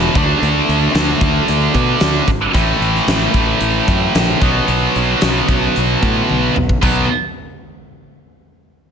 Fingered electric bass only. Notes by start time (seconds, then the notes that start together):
0.15 D2
0.42 D2
0.69 D2
0.94 D2
1.21 D2
1.49 D2
1.74 B2
2.01 D2
2.27 G#1
2.54 A1
2.80 A1
3.07 A1
3.34 A1
3.61 A1
3.88 F#2
4.15 A#1
4.41 B1
4.68 B1
4.96 B1
5.22 B1
5.48 B1
5.77 B1
6.02 A2
6.31 B1
6.57 B1
6.82 B1